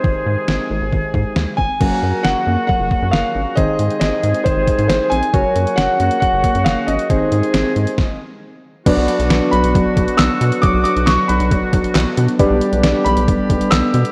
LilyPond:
<<
  \new Staff \with { instrumentName = "Grand piano" } { \time 4/4 \key aes \mixolydian \tempo 4 = 136 c''2. r8 aes''8~ | aes''4 ges''4 ges''4 f''4 | ees''4 ees''4 c''4 c''8 aes''8~ | aes''4 ges''4 ges''4 f''8 ees''8~ |
ees''2~ ees''8 r4. | \key b \minor r4. b''4. e'''4 | d'''8 d'''8 cis'''8 b''4 r4. | r4. b''4. e'''4 | }
  \new Staff \with { instrumentName = "Synth keys" } { \time 4/4 \key aes \mixolydian r1 | <bes des' ges' bes'>1 | <c' ees' aes' c''>1 | <des' ges' bes' des''>1 |
<c' ees' aes' c''>2 r2 | \key b \minor <b d' fis' b' d''>1~ | <b d' fis' b' d''>1 | <b d' g' b' d''>1 | }
  \new Staff \with { instrumentName = "Synth pluck" } { \clef bass \time 4/4 \key aes \mixolydian ees8 aes8 c'8 aes8 ees8 aes8 aes8 c'8 | ges8 bes8 des'8 bes8 ges8 bes8 bes8 des'8 | ees8 aes8 c'8 aes8 ees8 aes8 aes8 c'8 | ges8 bes8 des'8 bes8 ges8 bes8 bes8 des'8 |
ees8 aes8 c'8 aes8 r2 | \key b \minor fis8 fis8 fis8 fis8 fis8 fis8 b8 b8 | fis8 fis8 fis8 fis8 fis8 fis8 b8 b8 | g8 g8 g8 g8 g8 g8 b8 b8 | }
  \new Staff \with { instrumentName = "Woodwind section" } { \clef bass \time 4/4 \key aes \mixolydian << { <aes aes'>1 | <ges ges'>1 | <aes aes'>1 | <ges ges'>1 |
<aes aes'>2 r2 | \key b \minor <fis fis'>1~ | <fis fis'>1 | <g g'>1 | } \\ { <c ees ees'>1 | <bes, des des'>1 | <c ees ees'>1 | <bes, des des'>1 |
<c ees ees'>2 r2 | <b, d d'>1~ | <b, d d'>1~ | <b, d d'>1 | } >> }
  \new Staff \with { instrumentName = "Analog synth bass" } { \clef bass \time 4/4 \key aes \mixolydian aes,,16 r16 aes,16 r16 aes,,16 r16 aes,,16 aes,,16 aes,,16 r16 aes,16 r16 ees,16 r16 aes,,16 r16 | ges,,16 r16 ges,16 r16 ges,,16 r16 ges,16 r8 ges,,16 r16 ges,16 ges,,16 r16 aes,,16 r16 | aes,,16 r16 aes,16 r16 aes,,16 r16 aes,16 r8 aes,,16 r16 aes,16 aes,,16 r16 bes,,16 r16 | ges,,16 r16 ges,16 r16 ges,,16 r16 ges,16 r8 ges,,16 r16 ges,16 ges,,16 r16 aes,,16 r16 |
aes,,16 r16 aes,16 r16 aes,,16 r16 aes,16 r2 r16 | \key b \minor b,,16 b,,16 r16 b,,16 b,,16 r16 b,,16 b,,16 b,,16 r16 b,,16 r16 b,,16 r16 b,16 r16 | b,,16 b,,16 r16 b,,16 b,,16 r16 b,,16 b,,16 b,,16 r16 b,,16 r16 b,,16 r16 b,16 r16 | b,,16 b,,16 r16 b,,16 b,,16 r16 b,,16 b,,16 b,,16 r16 b,,16 r16 b,,16 r16 b,16 r16 | }
  \new DrumStaff \with { instrumentName = "Drums" } \drummode { \time 4/4 bd4 sn4 bd8 bd8 sn8 bd8 | <cymc bd>4 sn4 bd8 bd8 sn4 | <hh bd>8 hh16 hh16 <hh sn>8 hh16 hh16 <hh bd>8 <hh bd>16 hh16 <hh sn>8 hh16 hh16 | <hh bd>8 hh16 hh16 <hh sn>8 hh16 hh16 <hh bd>8 <hh bd>16 hh16 <hh sn>8 hh16 hh16 |
<hh bd>8 hh16 hh16 <hh sn>8 hh16 hh16 <bd sn>4 r4 | <cymc hh bd>8 hh16 hh16 <hh sn>8 hh16 hh16 <hh bd>8 <hh bd>16 hh16 <hc hh sn>8 hh16 hh16 | <hh bd>8 hh16 hh16 <hh sn>8 hh16 hh16 <hh bd>8 <hh bd>16 hh16 <hc hh sn>8 hh16 hh16 | <hh bd>8 hh16 hh16 <hh sn>8 hh16 hh16 <hh bd>8 <hh bd>16 hh16 <hc hh sn>8 hh16 hh16 | }
>>